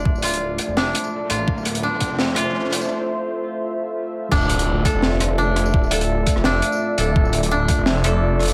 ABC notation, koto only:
X:1
M:4/4
L:1/8
Q:"Swing 16ths" 1/4=169
K:Dm
V:1 name="Koto"
z F3 D z2 F- | F2 D z2 F3 | z8 | D z2 A z2 D z |
z A z2 D z2 A | z2 D z2 A z2 |]